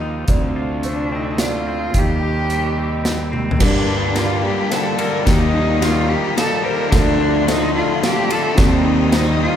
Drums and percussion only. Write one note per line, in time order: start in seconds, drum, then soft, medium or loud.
0.28 kick medium
0.28 closed hi-hat soft
0.83 closed hi-hat soft
1.38 snare medium
1.38 closed hi-hat soft
1.94 kick medium
1.94 closed hi-hat medium
2.50 closed hi-hat medium
3.05 snare medium
3.05 closed hi-hat soft
3.33 high tom soft
3.51 floor tom medium
3.60 kick medium
3.60 snare soft
3.60 crash loud
4.16 snare soft
4.16 ride medium
4.71 snare soft
4.71 ride medium
4.99 ride medium
5.27 kick medium
5.27 snare medium
5.27 ride medium
5.82 snare medium
5.82 ride medium
6.38 snare medium
6.38 ride medium
6.92 kick medium
6.92 snare medium
6.92 ride medium
7.48 snare medium
7.48 ride medium
8.03 snare medium
8.03 ride medium
8.30 ride medium
8.58 kick loud
8.58 snare medium
8.58 ride medium
9.12 snare medium
9.12 ride medium